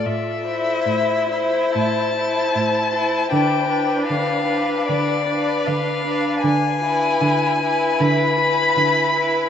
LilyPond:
<<
  \new Staff \with { instrumentName = "Violin" } { \time 4/4 \key a \minor \tempo 4 = 77 e''2 a''2 | g''4 f''4 d''4 f''4 | gis''2 b''2 | }
  \new Staff \with { instrumentName = "Violin" } { \time 4/4 \key a \minor r8 c''4 c''4 c''4 c''8 | b'8 b'4 b'4 b'4 b'8 | r8 b'4 b'4 b'4 b'8 | }
  \new Staff \with { instrumentName = "Viola" } { \time 4/4 \key a \minor r8 e'4 e'4 e'4 e'8 | d'8 d'4 d'4 d'4 d'8 | r8 e'4 e'4 e'4 e'8 | }
  \new Staff \with { instrumentName = "Cello" } { \clef bass \time 4/4 \key a \minor a,4 a,4 a,4 a,4 | d4 d4 d4 d4 | d4 d4 d4 d4 | }
>>